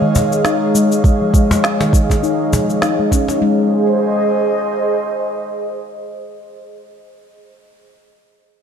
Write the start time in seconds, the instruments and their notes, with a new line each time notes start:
Already playing: analog synth pad G#3 G#4 C#5 D#5 F5
0.02 handpan D#3
0.15 cajon bass, cabasa
0.32 cabasa
0.45 handpan D#4, snare, cabasa
0.75 handpan G#3, cabasa
0.92 cabasa
1.04 handpan G#3, kick, cabasa
1.22 handpan F3
1.34 handpan G#3, kick, cabasa
1.51 handpan G#3, cajon bass, cajon slap, cabasa
1.64 snare, cabasa
1.81 handpan D#3, cajon slap
1.93 kick, cabasa
2.10 kick, cajon slap, cabasa
2.23 handpan D#4, cabasa
2.52 handpan F3, cajon bass, cabasa
2.70 cabasa
2.82 handpan D#4, snare, cabasa
2.99 handpan G#3
3.12 handpan C#4, kick, cajon slap, cabasa
3.28 handpan D#4, cajon slap, cabasa
3.42 handpan G#3, analog synth pad G#4
3.52 analog synth pad C5
3.62 analog synth pad D#5